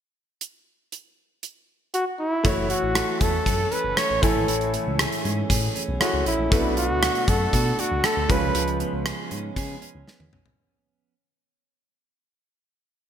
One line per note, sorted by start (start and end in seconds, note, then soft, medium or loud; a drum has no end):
0.41 closed hi-hat medium
0.92 closed hi-hat medium
1.43 closed hi-hat medium
1.94 2.06 F#4 medium
1.94 closed hi-hat medium
2.20 2.67 E4 medium
2.44 2.73 F#1 medium
2.44 4.23 E3 medium
2.44 4.19 A3 medium
2.44 4.19 E4 medium
2.44 4.19 F#4 medium
2.44 4.20 C#5 medium
2.44 kick loud
2.44 closed hi-hat medium
2.70 3.97 A3 medium
2.70 3.23 F#4 medium
2.70 closed hi-hat medium
2.83 3.02 A1 medium
2.95 3.46 A4 medium
2.95 cross-stick loud
2.95 closed hi-hat medium
3.21 3.40 E2 medium
3.21 3.72 C#4 medium
3.21 3.74 A4 medium
3.21 kick medium
3.21 closed hi-hat medium
3.46 3.65 F#2 loud
3.46 4.99 A4 medium
3.46 kick medium
3.46 closed hi-hat medium
3.72 5.24 C#4 medium
3.72 3.99 B4 medium
3.72 closed hi-hat medium
3.84 3.94 F#1 medium
3.97 4.73 A3 medium
3.97 4.25 C#5 medium
3.97 cross-stick medium
3.97 closed hi-hat medium
4.10 4.20 A1 medium
4.22 4.32 A1 loud
4.22 4.95 A2 medium
4.22 4.47 E3 medium
4.22 5.97 A3 medium
4.22 5.97 E4 medium
4.22 4.74 A4 medium
4.22 5.98 C#5 medium
4.22 5.97 G#5 medium
4.22 kick medium
4.22 closed hi-hat medium
4.36 4.45 G#1 medium
4.48 4.77 A1 loud
4.48 6.52 E3 medium
4.48 closed hi-hat medium
4.61 closed hi-hat soft
4.74 6.00 A3 medium
4.74 closed hi-hat medium
4.87 5.06 C#2 medium
4.99 5.49 G#4 medium
4.99 cross-stick loud
4.99 closed hi-hat medium
5.12 closed hi-hat medium
5.25 5.44 G#2 medium
5.25 5.74 C#4 medium
5.25 closed hi-hat medium
5.50 5.69 A2 loud
5.50 6.57 G#4 medium
5.50 kick medium
5.50 closed hi-hat medium
5.75 6.25 C#4 medium
5.75 closed hi-hat medium
5.88 5.98 B1 medium
6.00 6.49 A3 soft
6.00 6.51 A3 medium
6.00 6.52 E4 soft
6.00 6.24 F#4 medium
6.00 6.52 G#4 soft
6.00 6.52 C#5 medium
6.00 cross-stick medium
6.00 closed hi-hat medium
6.14 6.23 C#2 medium
6.26 6.36 A1 medium
6.26 6.57 C#4 medium
6.26 6.74 E4 medium
6.26 closed hi-hat medium
6.39 6.48 A#1 medium
6.50 6.91 B1 loud
6.50 7.24 B2 medium
6.50 8.25 A3 medium
6.50 6.76 A3 medium
6.50 6.57 C#4 soft
6.50 8.26 F#4 medium
6.50 8.27 B4 medium
6.50 kick loud
6.50 closed hi-hat medium
6.57 8.29 D4 medium
6.77 8.03 A3 medium
6.77 7.31 F#4 medium
6.77 closed hi-hat medium
6.90 7.09 D2 medium
7.03 7.52 F#4 medium
7.03 cross-stick loud
7.03 closed hi-hat medium
7.15 closed hi-hat medium
7.28 7.47 F#2 medium
7.28 7.78 D4 medium
7.28 7.81 A4 medium
7.28 kick medium
7.28 closed hi-hat medium
7.53 7.72 B2 loud
7.53 8.35 F#4 medium
7.53 kick medium
7.53 closed hi-hat medium
7.79 8.35 D4 medium
7.79 8.07 F#4 medium
7.79 closed hi-hat medium
7.91 8.01 C#2 medium
8.04 8.35 A3 medium
8.04 8.32 A4 loud
8.04 cross-stick medium
8.04 closed hi-hat medium
8.17 8.26 D2 medium
8.28 8.39 C#2 loud
8.28 9.02 C#3 medium
8.28 8.55 F3 medium
8.28 10.28 G#3 medium
8.28 10.29 C#4 medium
8.28 10.29 F4 medium
8.28 8.81 B4 medium
8.28 10.29 B4 medium
8.28 kick medium
8.28 closed hi-hat medium
8.42 8.52 C2 loud
8.55 8.84 C#2 loud
8.55 11.14 F3 medium
8.55 closed hi-hat medium
8.68 closed hi-hat soft
8.80 10.07 B3 medium
8.80 closed hi-hat medium
8.93 9.12 C#2 medium
9.06 9.56 G#4 medium
9.06 cross-stick loud
9.06 closed hi-hat medium
9.31 9.50 G#2 medium
9.31 9.82 C#4 medium
9.31 closed hi-hat medium
9.56 9.75 C#3 loud
9.56 11.14 G#4 medium
9.56 kick medium
9.56 closed hi-hat medium
9.82 10.33 C#4 medium
9.82 closed hi-hat medium
9.95 10.04 C#2 medium
10.08 11.14 B3 medium
10.08 snare soft
10.20 10.29 E2 medium
10.20 high tom medium
10.33 10.42 B1 medium
10.33 11.14 C#4 medium
10.33 mid tom medium
10.46 10.55 C2 medium
10.46 floor tom medium